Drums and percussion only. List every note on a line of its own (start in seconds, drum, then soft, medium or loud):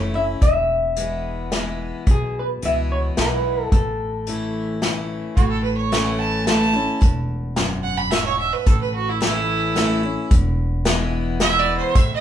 0.42 kick loud
0.42 closed hi-hat medium
0.97 closed hi-hat medium
1.52 snare medium
1.52 closed hi-hat medium
2.07 kick loud
2.07 closed hi-hat medium
2.62 closed hi-hat medium
3.17 snare medium
3.17 closed hi-hat medium
3.72 kick loud
3.72 closed hi-hat medium
4.27 closed hi-hat medium
4.82 snare medium
4.82 closed hi-hat medium
5.37 kick medium
5.37 closed hi-hat medium
5.93 snare medium
5.93 closed hi-hat medium
6.47 snare medium
6.47 closed hi-hat medium
7.02 kick loud
7.02 closed hi-hat medium
7.56 snare medium
7.56 closed hi-hat medium
8.12 snare medium
8.12 closed hi-hat medium
8.66 kick loud
8.66 closed hi-hat medium
9.22 snare medium
9.22 closed hi-hat medium
9.76 snare medium
9.76 closed hi-hat medium
10.31 kick loud
10.31 closed hi-hat medium
10.85 snare medium
10.85 closed hi-hat medium
11.40 snare medium
11.40 closed hi-hat medium
11.95 kick loud
11.95 closed hi-hat medium